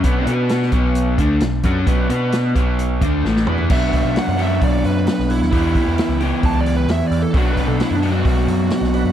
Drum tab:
CC |----------------|----------------|x---------------|----------------|
HH |x-x-x-x-x-x-x-x-|x-x-x-x-x-x-----|--o-o-o-o-o-o-o-|o-o-o-o-o-o-o-o-|
SD |----oo------o---|----o-------oo--|----o-------oo-o|----o-------o---|
T2 |----------------|--------------o-|----------------|----------------|
FT |----------------|---------------o|----------------|----------------|
BD |o-----o---o---o-|o-----o---o-----|o-o-----o-------|o-o-----o-------|

CC |----------------|
HH |o-o-o-o-o-o-o-o-|
SD |----o-------oo--|
T2 |----------------|
FT |----------------|
BD |o-o-----o-------|